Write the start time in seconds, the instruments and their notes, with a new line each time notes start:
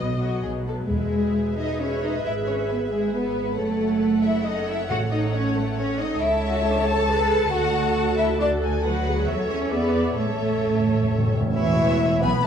Already playing: double bass section B1, cello section B2, viola section F#3 B3, violin section D#5
0.19 viola section F#3 B3, violin section F#4
0.43 double bass section B1, cello section B2, violin section G#4
0.67 viola section F#3 B3, violin section A4
0.89 double bass section E1, timpani E2, cello section G#3, viola section G#4 B4, violin section G#4 E5
1.57 cello section D#4, violin section D#5
1.80 cello section C#4, violin section C#5
2.02 cello section D#4, violin section D#5
2.24 double bass section G#1, cello section E4, violin section E5
2.46 cello section C#4, violin section C#5
2.68 cello section B3, violin section B4
2.91 cello section G#3, violin section G#4
3.14 cello section B3, violin section B4
3.57 double bass section F#1, cello section A3, viola section A4 C#5, violin section A4 F#5
4.23 cello section E4, violin section E5
4.46 cello section D#4, violin section D#5
4.68 cello section E4, violin section E5
4.89 double bass section A1, timpani A2, cello section F#4, violin section F#5
5.11 cello section D#4, violin section D#5
5.33 cello section C#4, violin section C#5
5.55 cello section A3, violin section A4
5.77 cello section C#4, violin section C#5
5.99 cello section D#4, violin section D#5
6.19 double bass section C#2, cello section E4, viola section A4 C#5, violin section E5 A5
6.50 cello section F#4
6.60 cello section E4
6.69 cello section D4
6.78 cello section E4
6.87 cello section A4, violin section A5
7.09 viola section G#4 B4
7.51 double bass section D2, cello section F#4, viola section F#4 A4, violin section F#5 A5
8.18 cello section E4, violin section E5
8.39 cello section D4, viola section F#4 A4, violin section D5 A5
8.63 violin section G#5
8.83 cello section F#3, viola section F#4 B4, violin section F#4 F#5
9.06 viola section G#4
9.26 double bass section E2, viola section A4 C#5, violin section E5
9.49 cello section C#4, violin section C#5
9.71 cello section B3, viola section G#4 D5, violin section B4 E5
10.17 double bass section A1, timpani A2, cello section A3, violin section A4 E5, viola section A4 C#5
10.26 timpani A2, cello section G#3
10.32 timpani A2, cello section A3
10.41 timpani A2
10.57 timpani A2
10.65 timpani A2
10.73 timpani A2
10.80 timpani A2
10.87 timpani A2
10.94 timpani A2
11.02 timpani A2
11.11 timpani A2
11.18 timpani A2
11.25 timpani A2
11.33 timpani A2
11.40 timpani A2
11.54 double bass section E1, cello section E2, bassoon E3, french horn section E3, viola section E3, clarinet E4, cor anglais E4, violin section C#5 E5, flute section E5
12.21 double bass section B1, cello section B2, french horn section B3, bassoon B3, viola section B3, clarinet B4, cor anglais B4, violin section G#5 B5, flute section B5